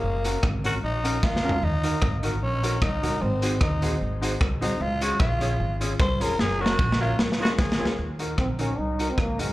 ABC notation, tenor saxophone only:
X:1
M:4/4
L:1/8
Q:"Swing" 1/4=151
K:Ebdor
V:1 name="Tenor saxophone"
B,2 z G E2 F2 | E3 z D2 E2 | C2 E2 z3 E | F G F3 z c B |
A G2 F z G A2 | z8 |]